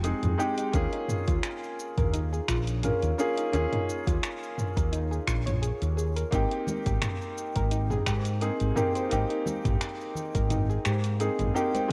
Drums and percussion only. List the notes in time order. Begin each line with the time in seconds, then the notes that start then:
0.04 closed hi-hat, cabasa
0.23 closed hi-hat, mid tom, cabasa
0.40 cabasa
0.58 closed hi-hat, cabasa
0.74 kick, closed hi-hat, cabasa
0.93 closed hi-hat
1.09 mid tom, cabasa
1.28 kick, closed hi-hat, cabasa
1.43 finger snap, closed hi-hat, cabasa
1.64 cabasa
1.80 cabasa
1.98 kick, closed hi-hat, mid tom, cabasa
2.14 closed hi-hat, cabasa
2.34 cabasa
2.48 finger snap, kick, cabasa
2.67 closed hi-hat, cabasa
2.83 closed hi-hat, mid tom, cabasa
3.02 closed hi-hat, cabasa
3.19 cabasa
3.38 closed hi-hat, cabasa
3.53 closed hi-hat, cabasa
3.73 closed hi-hat, mid tom
3.89 cabasa
4.07 kick, closed hi-hat, cabasa
4.23 finger snap, closed hi-hat, cabasa
4.43 cabasa
4.58 mid tom, cabasa
4.77 kick, closed hi-hat, cabasa
4.93 closed hi-hat, cabasa
5.13 cabasa
5.28 finger snap, kick, cabasa
5.47 closed hi-hat, mid tom, cabasa
5.63 closed hi-hat, cabasa
5.82 closed hi-hat, cabasa
5.98 cabasa
6.16 closed hi-hat, cabasa
6.32 kick, closed hi-hat, cabasa
6.51 closed hi-hat
6.67 high conga, low conga, cabasa
6.86 kick, closed hi-hat, cabasa
7.02 finger snap, closed hi-hat, mid tom, cabasa
7.22 cabasa
7.38 cabasa
7.56 kick, closed hi-hat, cabasa
7.71 closed hi-hat, cabasa
7.90 mid tom, cabasa
8.06 finger snap, kick, cabasa
8.25 closed hi-hat, cabasa
8.41 closed hi-hat, cabasa
8.60 closed hi-hat, cabasa
8.76 mid tom, cabasa
8.95 closed hi-hat, cabasa
9.11 closed hi-hat, cabasa
9.30 closed hi-hat
9.46 high conga, low conga, cabasa
9.65 kick, closed hi-hat, mid tom, cabasa
9.81 finger snap, closed hi-hat, cabasa
10.01 cabasa
10.15 low conga, cabasa
10.35 kick, closed hi-hat, cabasa
10.50 closed hi-hat, mid tom, cabasa
10.70 cabasa
10.85 finger snap, cabasa
11.04 closed hi-hat, cabasa
11.20 closed hi-hat, cabasa
11.39 closed hi-hat, mid tom, cabasa
11.56 cabasa
11.74 closed hi-hat, high conga, cabasa